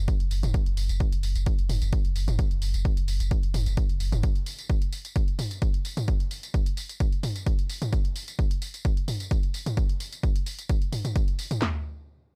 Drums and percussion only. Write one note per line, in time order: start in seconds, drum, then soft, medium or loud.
0.08 kick loud
0.08 closed hi-hat medium
0.08 tambourine soft
0.20 closed hi-hat medium
0.31 open hi-hat medium
0.31 tambourine medium
0.43 closed hi-hat medium
0.43 mid tom medium
0.43 tambourine soft
0.54 kick loud
0.54 closed hi-hat medium
0.54 tambourine soft
0.66 closed hi-hat medium
0.77 open hi-hat loud
0.77 tambourine medium
0.89 closed hi-hat medium
0.89 tambourine soft
1.00 kick loud
1.00 closed hi-hat medium
1.12 closed hi-hat medium
1.23 open hi-hat loud
1.23 tambourine medium
1.35 closed hi-hat medium
1.35 tambourine soft
1.46 kick loud
1.46 closed hi-hat medium
1.46 tambourine soft
1.59 closed hi-hat medium
1.69 mid tom medium
1.69 open hi-hat loud
1.69 tambourine medium
1.82 closed hi-hat medium
1.82 tambourine soft
1.93 kick loud
1.93 closed hi-hat medium
2.05 closed hi-hat medium
2.16 open hi-hat loud
2.16 tambourine medium
2.28 closed hi-hat medium
2.28 mid tom medium
2.28 tambourine soft
2.39 kick loud
2.39 closed hi-hat medium
2.39 tambourine soft
2.51 closed hi-hat medium
2.62 open hi-hat loud
2.62 tambourine medium
2.74 closed hi-hat soft
2.74 tambourine soft
2.85 kick loud
2.85 closed hi-hat medium
2.97 closed hi-hat medium
3.08 open hi-hat loud
3.08 tambourine medium
3.20 closed hi-hat medium
3.20 tambourine soft
3.31 kick loud
3.31 closed hi-hat medium
3.43 closed hi-hat medium
3.54 mid tom medium
3.54 open hi-hat loud
3.54 tambourine medium
3.66 closed hi-hat soft
3.66 tambourine soft
3.77 kick loud
3.77 closed hi-hat medium
3.89 closed hi-hat medium
4.00 open hi-hat medium
4.00 tambourine medium
4.12 closed hi-hat medium
4.12 mid tom medium
4.12 tambourine soft
4.23 kick loud
4.23 closed hi-hat medium
4.23 tambourine soft
4.36 closed hi-hat soft
4.46 open hi-hat loud
4.46 tambourine medium
4.59 closed hi-hat soft
4.59 tambourine soft
4.69 kick loud
4.69 closed hi-hat soft
4.82 closed hi-hat medium
4.93 open hi-hat medium
4.93 tambourine medium
5.05 closed hi-hat soft
5.05 tambourine soft
5.16 kick loud
5.16 closed hi-hat medium
5.16 tambourine soft
5.28 closed hi-hat soft
5.39 mid tom medium
5.39 open hi-hat loud
5.39 tambourine medium
5.51 closed hi-hat soft
5.51 tambourine soft
5.62 kick loud
5.62 closed hi-hat medium
5.62 tambourine soft
5.74 closed hi-hat soft
5.85 open hi-hat medium
5.85 tambourine medium
5.97 closed hi-hat medium
5.97 mid tom loud
5.97 tambourine soft
6.08 kick loud
6.08 closed hi-hat medium
6.20 closed hi-hat medium
6.31 open hi-hat loud
6.31 tambourine medium
6.43 closed hi-hat soft
6.43 tambourine soft
6.54 kick loud
6.54 closed hi-hat medium
6.66 closed hi-hat medium
6.77 open hi-hat medium
6.77 tambourine medium
6.89 closed hi-hat soft
6.89 tambourine soft
7.00 kick loud
7.00 closed hi-hat medium
7.00 tambourine soft
7.12 closed hi-hat soft
7.23 mid tom medium
7.23 open hi-hat loud
7.23 tambourine medium
7.36 closed hi-hat soft
7.36 tambourine soft
7.46 kick loud
7.46 closed hi-hat medium
7.46 tambourine soft
7.59 closed hi-hat medium
7.69 open hi-hat medium
7.69 tambourine medium
7.82 closed hi-hat soft
7.82 mid tom loud
7.82 tambourine soft
7.93 kick loud
7.93 closed hi-hat medium
7.93 tambourine soft
8.05 closed hi-hat medium
8.16 open hi-hat loud
8.16 tambourine medium
8.28 closed hi-hat soft
8.28 tambourine soft
8.39 kick loud
8.39 closed hi-hat medium
8.39 tambourine soft
8.51 closed hi-hat medium
8.62 open hi-hat medium
8.62 tambourine medium
8.74 closed hi-hat medium
8.74 tambourine soft
8.85 kick loud
8.85 closed hi-hat medium
8.85 tambourine soft
8.97 closed hi-hat medium
9.08 mid tom medium
9.08 open hi-hat loud
9.08 tambourine medium
9.20 closed hi-hat soft
9.20 tambourine soft
9.31 kick loud
9.31 closed hi-hat medium
9.31 tambourine soft
9.43 closed hi-hat soft
9.54 open hi-hat medium
9.54 tambourine medium
9.66 closed hi-hat medium
9.66 mid tom loud
9.66 tambourine soft
9.77 kick loud
9.77 closed hi-hat medium
9.89 closed hi-hat medium
10.00 open hi-hat loud
10.00 tambourine medium
10.13 closed hi-hat medium
10.13 tambourine soft
10.23 kick loud
10.23 closed hi-hat medium
10.23 tambourine soft
10.36 closed hi-hat medium
10.46 open hi-hat medium
10.46 tambourine medium
10.59 closed hi-hat medium
10.59 tambourine soft
10.69 kick loud
10.69 closed hi-hat medium
10.69 tambourine soft
10.82 closed hi-hat medium
10.93 mid tom medium
10.93 open hi-hat loud
10.93 tambourine medium
11.05 closed hi-hat soft
11.05 mid tom medium
11.05 tambourine soft
11.16 kick loud
11.16 closed hi-hat medium
11.28 closed hi-hat medium
11.39 open hi-hat medium
11.39 tambourine medium
11.51 closed hi-hat medium
11.51 mid tom loud
11.51 tambourine soft
11.62 snare loud
11.62 clap loud
11.62 floor tom loud